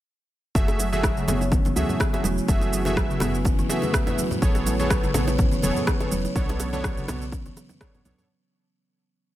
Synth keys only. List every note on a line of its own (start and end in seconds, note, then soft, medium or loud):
0.55 0.89 A3 medium
0.55 0.89 F#4 medium
0.55 0.89 G#4 medium
0.55 0.89 E5 loud
0.93 1.25 A3 medium
0.93 1.25 F#4 medium
0.93 1.25 G#4 medium
0.93 1.25 E5 medium
1.28 1.43 A3 medium
1.28 1.43 F#4 medium
1.28 1.43 G#4 medium
1.28 1.43 E5 medium
1.76 2.10 A3 medium
1.76 2.10 F#4 medium
1.76 2.10 G#4 medium
1.76 2.10 E5 medium
2.13 2.27 A3 medium
2.13 2.27 F#4 medium
2.13 2.27 G#4 medium
2.13 2.27 E5 medium
2.49 2.83 A3 medium
2.49 2.83 F#4 medium
2.49 2.83 G#4 medium
2.49 2.83 E5 medium
2.86 3.19 A3 medium
2.86 3.19 F#4 medium
2.86 3.19 G#4 medium
2.86 3.19 E5 loud
3.21 3.36 A3 medium
3.21 3.36 F#4 medium
3.21 3.36 G#4 medium
3.21 3.36 E5 medium
3.69 4.04 A3 medium
3.69 4.04 F#4 medium
3.69 4.04 G#4 medium
3.69 4.04 E5 medium
4.07 4.21 A3 medium
4.07 4.21 F#4 medium
4.07 4.21 G#4 medium
4.07 4.21 E5 medium
4.42 4.76 B3 medium
4.42 4.76 G#4 medium
4.42 4.76 A4 medium
4.42 4.76 C#5 loud
4.79 5.12 B3 medium
4.79 5.12 G#4 medium
4.79 5.12 A4 medium
4.79 5.12 C#5 loud
5.15 5.30 B3 medium
5.15 5.30 G#4 medium
5.15 5.30 A4 medium
5.15 5.30 C#5 medium
5.63 5.97 B3 medium
5.63 5.97 G#4 medium
5.63 5.97 A4 medium
5.63 5.97 C#5 medium
6.00 6.14 B3 medium
6.00 6.14 G#4 medium
6.00 6.14 A4 medium
6.00 6.14 C#5 medium
6.36 6.70 B3 medium
6.36 6.70 D4 medium
6.36 6.70 A4 medium
6.36 6.70 C#5 loud
6.73 7.06 B3 medium
6.73 7.06 D4 medium
6.73 7.06 A4 medium
6.73 7.06 C#5 loud
7.08 7.24 B3 medium
7.08 7.24 D4 medium
7.08 7.24 A4 medium
7.08 7.24 C#5 medium
7.81 8.02 B3 medium
7.81 8.02 D4 medium
7.81 8.02 A4 medium
7.81 8.02 C#5 medium
8.05 8.15 B3 medium
8.05 8.15 D4 medium
8.05 8.15 A4 medium
8.05 8.15 C#5 medium
8.18 8.28 B3 medium
8.18 8.28 D4 medium
8.18 8.28 A4 medium
8.18 8.28 C#5 medium